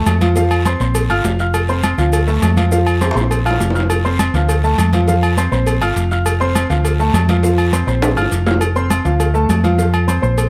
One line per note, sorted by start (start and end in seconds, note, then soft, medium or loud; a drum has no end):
0.00 0.15 A3 medium
0.00 0.16 A4 medium
0.00 0.16 A5 medium
0.06 0.74 F2 medium
0.06 cowbell medium
0.06 high conga medium
0.06 low timbale medium
0.06 low agogo loud
0.06 short guiro medium
0.06 maracas medium
0.21 0.33 F3 medium
0.21 0.33 F4 medium
0.21 0.33 F5 medium
0.21 cowbell medium
0.21 high conga medium
0.21 low agogo medium
0.21 short guiro medium
0.21 maracas soft
0.36 0.60 F3 medium
0.36 0.60 F4 medium
0.36 0.61 F5 medium
0.36 cowbell loud
0.36 high conga soft
0.36 long guiro medium
0.36 maracas medium
0.51 high conga soft
0.51 low agogo loud
0.51 maracas soft
0.65 0.78 C4 medium
0.65 0.78 C5 medium
0.65 0.78 C6 medium
0.65 cowbell medium
0.65 high conga medium
0.65 low agogo loud
0.65 short guiro medium
0.65 maracas medium
0.80 1.08 A#1 loud
0.80 1.05 C4 medium
0.80 1.05 C5 medium
0.80 1.05 C6 medium
0.80 high conga soft
0.80 short guiro medium
0.80 maracas soft
0.95 cowbell loud
0.95 high conga soft
0.95 low agogo medium
0.95 long guiro medium
0.95 maracas medium
1.10 1.23 G1 medium
1.10 1.34 F4 medium
1.10 1.34 F5 medium
1.10 1.34 F6 medium
1.10 high conga soft
1.10 low agogo loud
1.10 maracas soft
1.24 1.93 F1 medium
1.24 cowbell medium
1.24 high conga soft
1.24 low timbale medium
1.24 short guiro medium
1.24 maracas medium
1.39 1.64 F4 medium
1.39 1.64 F5 medium
1.39 1.64 F6 medium
1.39 high conga soft
1.39 short guiro medium
1.39 maracas soft
1.54 cowbell loud
1.54 high conga soft
1.54 low agogo medium
1.54 long guiro medium
1.54 maracas medium
1.69 1.93 C4 medium
1.69 1.93 C5 medium
1.69 1.93 C6 medium
1.69 high conga soft
1.69 maracas soft
1.83 cowbell medium
1.83 high conga medium
1.83 low agogo loud
1.83 short guiro medium
1.83 maracas medium
1.98 2.39 D2 loud
1.98 2.22 F3 medium
1.98 2.22 F4 medium
1.98 2.23 F5 medium
1.98 cowbell medium
1.98 short guiro medium
1.98 maracas soft
2.13 cowbell loud
2.13 high conga soft
2.13 low agogo medium
2.13 long guiro medium
2.13 maracas medium
2.27 2.52 A3 medium
2.27 2.52 A4 medium
2.27 2.52 A5 medium
2.27 high conga soft
2.27 maracas soft
2.42 3.11 F2 loud
2.42 cowbell medium
2.42 high conga medium
2.42 low timbale medium
2.42 low agogo medium
2.42 short guiro medium
2.42 maracas medium
2.57 2.69 F3 medium
2.57 2.69 F4 medium
2.57 2.69 F5 medium
2.57 cowbell medium
2.57 high conga medium
2.57 low agogo medium
2.57 short guiro medium
2.57 maracas soft
2.71 2.96 F3 medium
2.71 2.96 F4 medium
2.71 2.96 F5 medium
2.71 cowbell loud
2.71 high conga soft
2.71 long guiro medium
2.71 maracas medium
2.87 high conga soft
2.87 low agogo loud
2.87 maracas soft
3.01 3.13 C4 medium
3.01 3.13 C5 medium
3.01 3.13 C6 medium
3.01 cowbell medium
3.01 high bongo medium
3.01 high conga medium
3.01 low agogo medium
3.01 short guiro medium
3.01 maracas medium
3.11 high bongo medium
3.15 3.57 A#1 loud
3.15 3.40 C4 medium
3.15 3.40 C5 medium
3.15 3.40 C6 medium
3.15 high conga soft
3.15 short guiro medium
3.15 maracas soft
3.21 low bongo medium
3.31 cowbell medium
3.31 high conga soft
3.31 low agogo medium
3.31 long guiro medium
3.31 maracas medium
3.45 3.70 F4 medium
3.45 3.70 F5 medium
3.45 3.70 F6 medium
3.45 high conga soft
3.45 low agogo medium
3.45 maracas soft
3.51 low bongo loud
3.60 4.29 F1 loud
3.60 cowbell medium
3.60 high conga soft
3.60 low timbale medium
3.60 short guiro medium
3.60 maracas medium
3.70 low bongo loud
3.75 3.99 F4 medium
3.75 3.99 F5 medium
3.75 3.99 F6 medium
3.75 high conga soft
3.75 short guiro medium
3.75 maracas soft
3.80 low bongo loud
3.90 cowbell loud
3.90 high conga soft
3.90 low agogo loud
3.90 long guiro medium
3.90 maracas medium
4.05 4.29 C4 medium
4.05 4.29 C5 medium
4.05 4.29 C6 medium
4.05 high conga soft
4.05 maracas soft
4.19 cowbell medium
4.19 high conga loud
4.19 low agogo loud
4.19 short guiro medium
4.19 maracas medium
4.34 4.75 D2 loud
4.34 4.59 F3 medium
4.34 4.59 F4 medium
4.34 4.59 F5 medium
4.34 cowbell medium
4.34 short guiro medium
4.34 maracas soft
4.49 cowbell loud
4.49 high conga soft
4.49 low agogo medium
4.49 long guiro medium
4.49 maracas medium
4.64 4.88 A3 medium
4.64 4.88 A4 medium
4.64 4.88 A5 medium
4.64 high conga soft
4.64 maracas soft
4.78 5.46 F2 loud
4.78 cowbell medium
4.78 high conga medium
4.78 low agogo loud
4.78 short guiro medium
4.78 maracas medium
4.93 5.05 F3 medium
4.93 5.05 F4 medium
4.93 5.06 F5 medium
4.93 cowbell medium
4.93 high conga medium
4.93 low agogo medium
4.93 short guiro medium
4.93 maracas soft
5.08 5.32 F3 medium
5.08 5.32 F4 medium
5.08 5.32 F5 medium
5.08 cowbell loud
5.08 high conga soft
5.08 long guiro medium
5.08 maracas medium
5.23 high conga soft
5.23 low agogo loud
5.23 maracas soft
5.37 5.49 C4 medium
5.37 5.50 C5 medium
5.37 5.50 C6 medium
5.37 cowbell medium
5.37 high conga medium
5.37 low agogo medium
5.37 short guiro medium
5.37 maracas medium
5.52 5.79 A#1 loud
5.52 5.76 C4 medium
5.52 5.76 C5 medium
5.52 5.76 C6 medium
5.52 high conga soft
5.52 short guiro medium
5.52 maracas soft
5.67 cowbell loud
5.67 high conga soft
5.67 low agogo medium
5.67 long guiro medium
5.67 maracas medium
5.81 5.95 G1 medium
5.81 6.06 F4 medium
5.81 6.06 F5 medium
5.81 6.06 F6 medium
5.81 high conga soft
5.81 low agogo loud
5.81 maracas soft
5.96 6.64 F1 medium
5.96 cowbell medium
5.96 high conga soft
5.96 short guiro medium
5.96 maracas medium
6.11 6.35 F4 medium
6.11 6.35 F5 medium
6.11 6.36 F6 medium
6.11 high conga soft
6.11 short guiro medium
6.11 maracas soft
6.26 cowbell loud
6.26 high conga soft
6.26 low agogo loud
6.26 long guiro medium
6.26 maracas medium
6.40 6.64 C4 medium
6.40 6.65 C5 medium
6.40 6.65 C6 medium
6.40 high conga soft
6.40 maracas soft
6.55 cowbell medium
6.55 high conga loud
6.55 low agogo loud
6.55 short guiro medium
6.55 maracas medium
6.70 7.11 D2 loud
6.70 6.94 F3 medium
6.70 6.94 F4 medium
6.70 6.94 F5 medium
6.70 cowbell medium
6.70 short guiro medium
6.70 maracas soft
6.85 cowbell loud
6.85 high conga soft
6.85 low agogo medium
6.85 long guiro medium
6.85 maracas medium
6.99 7.24 A3 medium
6.99 7.24 A4 medium
6.99 7.24 A5 medium
6.99 high conga soft
6.99 maracas soft
7.14 7.82 F2 loud
7.14 cowbell medium
7.14 high conga medium
7.14 low timbale medium
7.14 low agogo loud
7.14 short guiro medium
7.14 maracas medium
7.29 7.41 F3 medium
7.29 7.41 F4 medium
7.29 7.41 F5 medium
7.29 cowbell medium
7.29 high conga medium
7.29 low agogo medium
7.29 short guiro medium
7.29 maracas soft
7.43 7.68 F3 medium
7.43 7.68 F4 medium
7.43 7.68 F5 medium
7.43 cowbell loud
7.43 high conga soft
7.43 long guiro medium
7.43 maracas medium
7.58 high conga soft
7.58 low agogo loud
7.58 maracas soft
7.73 7.85 C4 medium
7.73 7.85 C5 medium
7.73 7.85 C6 medium
7.73 cowbell medium
7.73 high conga medium
7.73 low agogo medium
7.73 short guiro medium
7.73 maracas medium
7.87 8.15 A#1 loud
7.87 8.12 C4 medium
7.87 8.12 C5 medium
7.87 8.12 C6 medium
7.87 high conga soft
7.87 short guiro medium
7.87 maracas soft
8.02 cowbell loud
8.02 high bongo medium
8.02 high conga soft
8.02 high timbale loud
8.02 low agogo medium
8.02 long guiro medium
8.02 maracas medium
8.12 high bongo medium
8.16 8.30 G1 medium
8.16 8.41 F4 medium
8.16 8.41 F5 medium
8.16 8.41 F6 medium
8.16 high conga soft
8.16 low agogo loud
8.16 maracas soft
8.22 low bongo medium
8.31 9.00 F1 medium
8.31 cowbell medium
8.31 high conga soft
8.31 short guiro medium
8.31 maracas medium
8.46 8.58 F4 medium
8.46 8.59 F5 medium
8.46 8.59 F6 medium
8.46 high conga soft
8.46 low timbale loud
8.46 short guiro medium
8.46 maracas soft
8.51 low bongo loud
8.61 cowbell loud
8.61 high conga soft
8.61 low agogo loud
8.61 maracas medium
8.76 9.00 C4 medium
8.76 9.00 C5 medium
8.76 9.00 C6 medium
8.76 high conga soft
8.76 maracas soft
8.90 cowbell medium
8.90 high conga loud
8.90 low agogo loud
8.90 maracas medium
9.05 9.46 D2 loud
9.05 9.29 F3 medium
9.05 9.29 F4 medium
9.05 9.29 F5 medium
9.05 cowbell medium
9.05 maracas soft
9.20 cowbell loud
9.20 high conga soft
9.20 low agogo medium
9.20 maracas medium
9.34 9.58 A3 medium
9.34 9.59 A4 medium
9.34 9.59 A5 medium
9.34 high conga soft
9.34 maracas soft
9.49 10.18 F2 loud
9.49 cowbell medium
9.49 high conga medium
9.49 low timbale medium
9.49 low agogo loud
9.49 maracas medium
9.64 9.76 F3 medium
9.64 9.76 F4 medium
9.64 9.76 F5 medium
9.64 cowbell medium
9.64 high conga medium
9.64 low agogo medium
9.64 maracas soft
9.78 10.03 F3 medium
9.78 10.03 F4 medium
9.78 10.03 F5 medium
9.78 cowbell loud
9.78 high conga soft
9.78 maracas medium
9.94 high conga soft
9.94 low agogo loud
9.94 maracas soft
10.07 10.20 C4 medium
10.07 10.20 C5 medium
10.07 10.20 C6 medium
10.07 cowbell medium
10.07 high conga medium
10.07 low agogo medium
10.07 maracas medium
10.22 10.49 A#1 loud
10.22 10.47 C4 medium
10.22 10.47 C5 medium
10.22 10.47 C6 medium
10.22 high conga soft
10.22 maracas soft
10.38 cowbell loud
10.38 high conga soft
10.38 low agogo medium
10.38 maracas medium